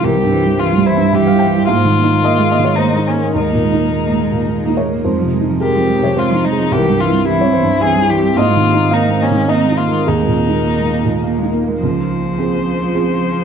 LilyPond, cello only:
\new Staff \with { instrumentName = "Cello" } { \clef bass \time 3/4 \key ees \mixolydian \tempo 4 = 107 e16 g16 e16 g16 e16 g16 e16 g16 e16 g16 e16 g16 | bes16 aes16 bes16 aes16 bes16 aes16 bes16 aes16 bes16 aes16 bes16 aes16 | aes16 bes16 aes16 bes16 aes16 bes16 aes16 bes16 aes16 bes16 aes16 bes16 | aes16 f16 aes16 f16 aes16 f16 aes16 f16 aes16 f16 aes16 f16 |
e16 g16 e16 g16 e16 g16 e16 g16 e16 g16 e16 g16 | bes16 aes16 bes16 aes16 bes16 aes16 bes16 aes16 bes16 aes16 bes16 aes16 | bes16 aes16 bes16 aes16 bes16 aes16 bes16 aes16 bes16 aes16 bes16 aes16 | f2. | }